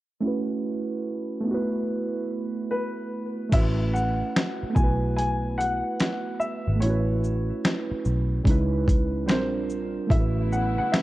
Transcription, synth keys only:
0.21 1.39 A3 medium
0.21 1.46 C#4 medium
0.21 1.47 E4 medium
0.26 1.48 F#4 medium
0.26 1.49 B4 medium
1.40 3.45 A3 medium
1.40 3.47 B3 medium
1.47 1.55 D#4 soft
1.47 3.50 F#4 medium
1.54 3.52 E4 medium
1.54 3.52 B4 medium
3.49 4.68 A3 medium
3.49 4.75 C#4 medium
3.49 4.76 E4 medium
3.55 4.77 F#4 medium
3.55 4.78 B4 medium
4.70 6.74 A3 medium
4.70 6.76 B3 soft
4.77 6.78 E4 medium
4.77 6.79 F#4 medium
4.83 6.81 B4 medium
6.76 8.39 A3 medium
6.76 6.89 B3 soft
6.82 8.45 C#4 medium
6.82 8.43 E4 medium
6.82 8.45 F#4 soft
6.90 8.47 B4 medium
8.44 9.27 G#3 medium
8.44 9.28 C#4 medium
8.44 9.29 D#4 medium
8.49 9.30 E4 medium
8.49 9.30 B4 medium
9.26 10.09 G3 medium
9.26 10.10 C4 medium
9.26 10.11 D4 medium
9.31 10.12 F4 medium
9.31 10.13 A#4 medium
10.07 11.02 A3 medium
10.07 11.02 C#4 medium
10.07 11.02 E4 medium
10.12 11.02 F#4 medium
10.12 10.20 A4 soft
10.20 11.02 B4 medium

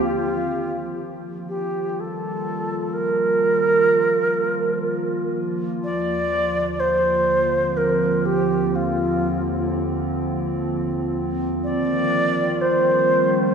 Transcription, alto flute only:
0.02 0.99 F4 loud
1.49 2.02 G4 medium
2.00 2.95 A4 medium
2.93 5.35 A#4 loud
5.84 6.81 D5 loud
6.80 7.79 C5 medium
7.77 8.27 A#4 medium
8.26 8.77 G4 medium
8.76 9.71 F4 medium
11.64 12.63 D5 loud
12.61 13.54 C5 medium

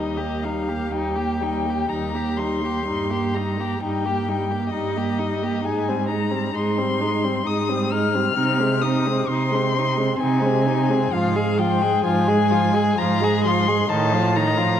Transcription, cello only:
0.00 0.83 D#2 soft
0.95 1.81 D#2 soft
1.92 2.76 D#2 soft
2.90 3.71 G2 soft
3.81 4.63 G2 soft
4.75 5.55 G2 soft
5.66 6.45 G#2 soft
6.54 7.35 G#2 soft
7.46 8.26 G#2 soft
8.36 9.17 C3 medium
9.28 10.09 C3 medium
10.19 11.02 C3 medium
11.13 11.94 G#2 medium
12.06 12.87 G#2 medium
12.99 13.79 G#2 medium
13.90 14.70 A2 medium

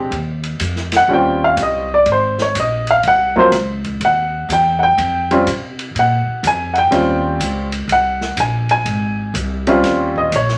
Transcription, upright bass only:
0.11 0.58 D#2 medium
0.60 1.07 F2 medium
1.08 1.56 D#2 medium
1.57 2.04 C2 loud
2.06 2.53 G#1 medium
2.55 3.02 A#1 medium
3.04 3.51 C2 medium
3.52 3.99 C#2 loud
4.00 4.48 D#2 medium
4.49 4.96 E2 loud
4.98 5.45 F2 medium
5.47 5.94 C3 loud
5.95 6.25 A#2 medium
6.27 muted upright bass stroke soft
6.43 6.91 F2 medium
6.92 7.39 D#2 medium
7.40 7.87 C#2 medium
7.88 8.36 C2 medium
8.37 8.85 A#1 medium
8.85 9.33 G#1 medium
9.34 9.82 C2 loud
9.83 10.31 D#2 medium
10.32 10.58 A#1 medium

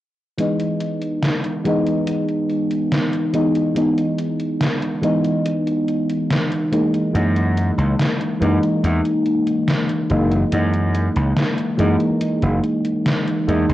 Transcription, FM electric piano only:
0.37 1.60 E3 medium
0.37 1.60 G#3 medium
0.37 1.61 B3 medium
0.37 1.61 D#4 medium
1.64 3.29 E3 medium
1.64 3.29 G#3 medium
1.64 3.30 B3 medium
1.64 3.30 D#4 loud
3.33 3.71 E3 medium
3.33 3.71 G#3 medium
3.33 3.72 B3 medium
3.33 3.72 D#4 medium
3.75 4.97 E3 medium
3.75 4.98 G#3 medium
3.75 4.99 B3 medium
3.75 4.99 D#4 medium
5.02 6.67 E3 medium
5.02 6.67 G#3 medium
5.02 6.68 B3 medium
5.02 6.68 D#4 loud
6.72 7.09 E3 medium
6.72 7.10 G#3 medium
6.72 7.10 A#3 medium
6.72 7.10 D#4 medium
7.13 8.36 E3 medium
7.13 8.36 G#3 medium
7.13 8.37 A#3 medium
7.13 8.37 D#4 medium
8.40 10.05 E3 medium
8.40 10.05 G#3 medium
8.40 10.06 A#3 medium
8.40 10.06 D#4 loud
10.10 10.47 E3 medium
10.10 10.48 G#3 medium
10.10 10.48 A#3 medium
10.10 10.48 D#4 medium
10.51 11.74 E3 medium
10.51 11.74 G#3 medium
10.51 11.75 A#3 medium
10.51 11.75 D#4 medium
11.77 13.42 E3 medium
11.77 13.43 G#3 medium
11.77 13.43 A#3 medium
11.77 13.44 D#4 loud
13.48 13.74 E3 medium
13.48 13.74 G#3 medium
13.48 13.74 A#3 medium
13.48 13.74 D#4 medium

